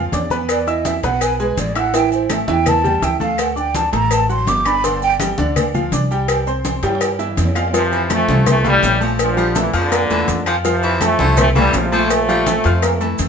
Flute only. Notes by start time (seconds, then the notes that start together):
0.50 D5
0.68 D#5
0.86 E5
1.05 F#5
1.22 G#5
1.41 B4
1.59 D5
1.77 F#5
1.96 G5
2.14 C5
2.32 E5
2.50 G5
2.68 A5
3.04 G5
3.21 F5
3.40 F#5
3.58 G5
3.76 A5
3.94 A#5
4.13 A5
4.30 C6
4.49 D6
4.67 B5
4.85 C6
5.03 G5